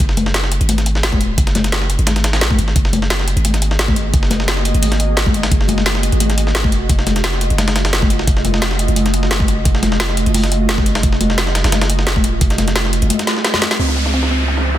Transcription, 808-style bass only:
0.00 F#1
0.61 G#1
1.12 D#1
1.38 F#1
1.99 G#1
2.41 A#1
2.58 G#1
2.76 F#1
3.36 G#1
4.14 F#1
4.74 G#1
5.51 F#1
6.12 G#1
6.64 F1
6.89 F1
7.50 F#1
8.27 F1
8.88 F#1
9.65 F1
10.26 F#1
11.03 F1
11.64 F#1
12.16 D#1
12.41 F1
13.02 F#1
13.79 C#2

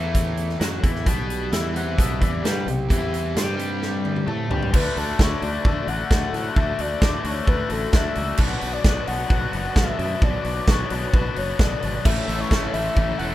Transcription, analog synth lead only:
1.76 F#5
2.01 E5
2.23 D5
2.46 B4
2.70 G4
4.76 B4
4.97 A4
5.22 C#5
5.43 D5
5.88 F#5
6.10 F#5
6.56 E5
6.81 D5
7.03 D5
7.26 C#5
7.49 B4
7.72 A4
7.95 E5
8.40 F#5
8.73 D5
9.08 F#5
9.77 E5
10.24 D5
10.70 C#5
10.91 C#5
11.14 B4
11.37 C#5
11.60 D5
12.05 E5
12.40 C#5
12.73 E5
13.19 F#5

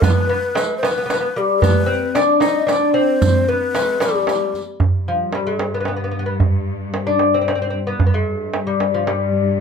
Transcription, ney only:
0.04 B4
0.78 C5
0.84 B4
1.38 G4
1.63 B4
2.43 D#5
2.68 D5
2.95 C5
3.49 B4
4.02 G4

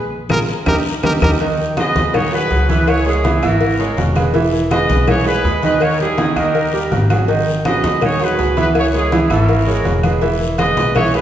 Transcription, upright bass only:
0.29 A#1
0.66 D#2
1.03 D#2
1.22 D#2
1.95 D#2
2.51 C#2
3.42 G#1
3.98 E1
4.89 B1
5.44 D#2
6.36 D#2
6.92 G#1
7.83 D#2
8.38 C#2
9.30 G#1
9.85 E1
10.77 B1

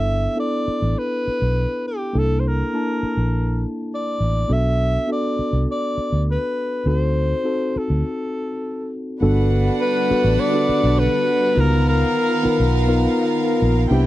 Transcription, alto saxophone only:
Already playing: E5
0.40 D5
0.98 B4
1.87 G4
2.18 A4
2.40 C5
2.48 A#4
3.95 D5
4.53 E5
5.12 D5
5.71 D5
6.31 B4
6.87 C5
7.78 A4
9.81 B4
10.40 D5
10.99 B4
11.60 A#4
11.88 A#4

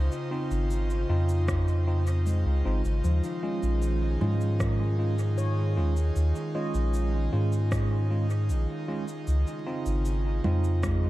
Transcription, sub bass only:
0.51 G#1
1.09 F2
2.46 C#2
2.65 G#1
2.85 G#1
3.04 D#2
3.63 A#1
4.21 G#2
5.77 D#2
6.16 D#2
6.74 A#1
7.33 G#2
8.49 A#1
9.27 C#2
9.86 G#1
10.44 F2

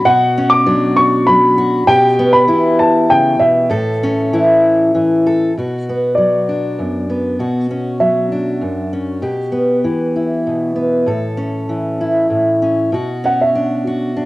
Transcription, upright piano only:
0.05 F#5
0.50 D6
0.96 C#6
1.27 B5
1.87 G5
2.33 B5
2.79 A5
3.10 G5
3.40 E5
6.15 D5
8.00 E5
13.26 F#5
13.41 E5

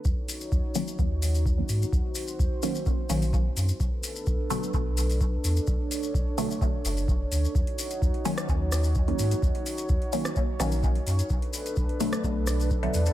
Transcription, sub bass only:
0.05 D#2
0.52 D#2
0.99 D#2
1.69 G#2
1.93 D#2
2.39 D#2
3.10 A#1
3.57 F#2
3.80 B1
4.27 B1
4.74 B1
5.44 E2
5.68 B1
6.14 B1
6.85 F#1
7.32 D2
7.55 D#2
8.02 D#2
8.49 D#2
9.19 G#2
9.43 D#2
9.89 D#2
10.60 A#1
11.07 F#2
11.30 B1
11.77 B1
12.24 B1
12.94 E2

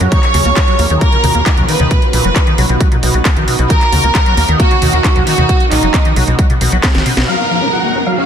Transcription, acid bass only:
0.00 F#3
0.12 D#3
0.34 C#3
0.45 A#3
0.57 D#4
0.68 F#3
0.79 A#3
0.90 D#3
1.01 A#3
1.13 C#3
1.24 D#3
1.35 A#3
1.46 D#4
1.57 F#3
1.68 D#3
1.80 D#3
1.91 B2
2.13 A#2
2.24 F#3
2.36 B3
2.47 D#3
2.58 F#3
2.69 B2
2.80 F#3
2.92 A#2
3.03 B2
3.14 F#3
3.25 B3
3.36 D#3
3.48 B2
3.59 B2
3.70 D#3
3.92 C#3
4.04 A#3
4.15 D#4
4.26 F#3
4.37 A#3
4.48 D#3
4.60 A#3
4.71 C#3
4.82 D#3
4.93 A#3
5.04 D#4
5.16 F#3
5.27 D#3
5.38 D#3
5.49 B2
5.72 A#2
5.83 F#3
5.94 B3
6.05 D#3
6.16 F#3
6.28 B2
6.39 F#3
6.50 A#2
6.61 B2
6.72 F#3
6.83 B3
6.95 D#3
7.06 B2
7.17 B2
7.28 F#3
7.51 F3
7.62 C#4
7.73 F#4
7.84 A#3
7.95 C#4
8.07 F#3
8.18 C#4

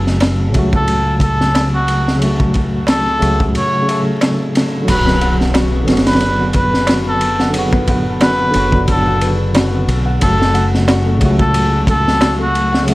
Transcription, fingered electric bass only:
Already playing: F#1
0.56 C#2
3.22 C#2
4.89 B1
5.89 F#1
8.55 F#1
9.88 B1
10.22 F#1
11.22 C#2

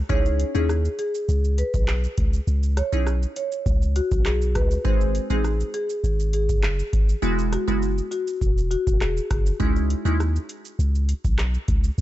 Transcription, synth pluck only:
0.09 C#4 D#4 E4 G#4
0.55 C#4 D#4 E4 G#4
2.92 C#4 D#4 E4 G#4
4.85 G#3 C4 D#4 G#4
5.30 G#3 C4 D#4 G#4
7.22 G#3 B3 E4 F#4
7.68 G#3 B3 E4 F#4
9.60 G#3 C#4 D#4 E4
10.05 G#3 C#4 D#4 E4

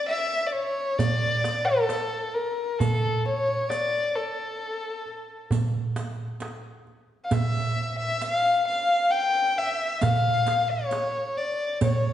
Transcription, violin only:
0.09 E5
0.46 D5
0.52 C#5
0.98 D5
1.65 A4
2.34 A#4
2.79 A4
3.25 C#5
3.69 D5
4.16 A4
7.24 F5
7.33 E5
7.98 E5
8.22 F5
8.67 F5
9.10 G5
9.57 E5
10.01 F5
10.70 C#5
11.37 D5
11.83 C#5

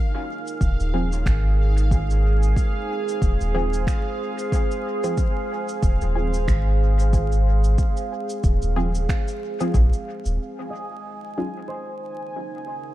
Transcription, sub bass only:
0.61 D#1
0.80 D#1
1.26 G#1
3.22 D#1
3.41 D#1
5.83 D#1
6.02 D#1
6.48 G#1
8.44 D#1
8.63 D#1
9.74 A#1
10.25 D#1

